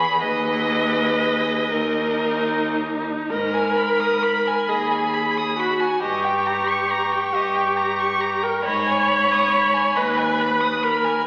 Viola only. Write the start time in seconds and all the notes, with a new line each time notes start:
Already playing: G#4
0.23 G#4
1.72 D#4
3.30 A#4
4.68 G#4
5.59 F#4
6.02 G4
7.34 G4
8.43 A#4
8.65 C#5
9.97 B4
10.84 A#4